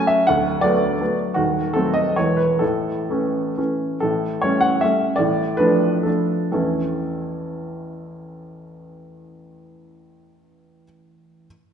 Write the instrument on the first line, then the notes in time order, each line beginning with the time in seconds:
grand piano
Already playing: F#3 A3 C#4
0.07 E5
0.27 D1 D2 F#5
0.61 F#3 A3 B3 D5
1.01 F#3 A3 B3
1.34 D#1 D#2 F#4
1.73 F#3 A3 C4 A4
1.94 D#5
2.16 E1 E2 E3 G#3 B3 C#5
2.37 B4
2.59 A1 A2 A4
3.10 E3 A3 C#4
3.58 E3 A3 C#4
4.00 A1 A2 A4
4.42 G3 A3 C#4 C#5
4.61 F#5
4.81 G3 A3 C#4 E5
5.16 A1 A2 D5
5.57 F3 A3 D4 B4
6.03 F3 A3 D4 A4
6.52 A1 E2 E3 A3 C#4 E4 A4